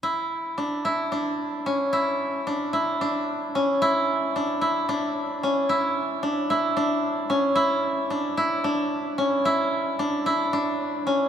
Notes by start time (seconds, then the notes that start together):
0.03 E4
0.58 D4
0.85 E4
1.12 D4
1.66 C#4
1.93 E4
2.47 D4
2.73 E4
3.01 D4
3.55 C#4
3.82 E4
4.36 D4
4.61 E4
4.89 D4
5.43 C#4
5.69 E4
6.23 D4
6.50 E4
6.77 D4
7.30 C#4
7.55 E4
8.10 D4
8.37 E4
8.64 D4
9.18 C#4
9.45 E4
9.99 D4
10.26 E4
10.53 D4
11.07 C#4